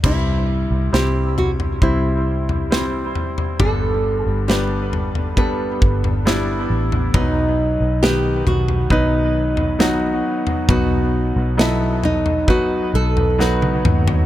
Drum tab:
CC |x---------------|----------------|----------------|----------------|
SD |----o-------o---|----o-------o---|----o-------o---|----o-------o---|
T1 |----------------|----------------|----------------|-------------o--|
T2 |----------------|----------------|----------------|--------------o-|
FT |o-----oo---o--oo|o-----oo---o---o|o-----oo---o---o|o-----oo---o---o|
BD |o-------o-------|o-------o-o-----|o-------o-------|o-------o-------|